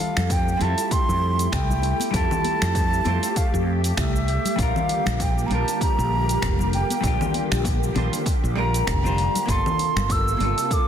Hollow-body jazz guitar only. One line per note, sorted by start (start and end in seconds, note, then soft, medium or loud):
0.00 0.56 G3 medium
0.00 0.57 C4 medium
0.00 0.58 F4 medium
0.00 0.58 G4 medium
0.00 0.59 A4 medium
0.57 2.09 G3 medium
0.57 2.10 C4 medium
0.57 2.11 E4 medium
0.62 2.11 F4 medium
0.62 2.12 A4 medium
2.11 3.01 G3 medium
2.11 3.02 C4 medium
2.11 3.03 E4 medium
2.16 3.03 F4 medium
2.16 3.04 G4 loud
3.04 3.25 G3 medium
3.04 3.26 C4 medium
3.04 3.26 E4 medium
3.04 3.26 F4 medium
3.04 3.27 C5 medium
4.56 5.46 G3 medium
4.56 5.47 C4 medium
4.56 5.48 D4 medium
4.61 5.48 F4 medium
4.61 5.49 A#4 loud
5.48 6.99 G3 medium
5.48 7.00 C4 medium
5.48 7.01 D4 medium
5.53 7.02 F4 medium
5.53 7.02 A#4 medium
7.01 7.91 G3 medium
7.01 7.92 C4 medium
7.01 7.92 D4 medium
7.06 7.93 F4 medium
7.06 7.94 G4 loud
7.94 8.15 G3 medium
7.94 8.15 C4 medium
7.94 8.16 D4 medium
7.94 8.16 F4 medium
7.94 8.17 C5 medium
8.55 9.00 G3 medium
8.55 9.00 C4 medium
8.55 9.01 D4 medium
8.55 9.01 F4 medium
8.55 9.01 A#4 loud
9.03 9.45 G3 medium
9.03 9.45 C4 medium
9.03 9.45 D4 medium
9.03 9.46 F4 medium
9.03 9.46 C5 loud
9.46 10.36 A#3 medium
9.46 10.37 C4 medium
9.46 10.37 D4 medium
9.50 10.38 F4 medium
9.50 10.39 A4 medium
10.37 10.88 A#3 medium
10.37 10.88 C4 medium
10.37 10.88 D4 medium
10.42 10.88 F4 medium
10.42 10.88 A4 medium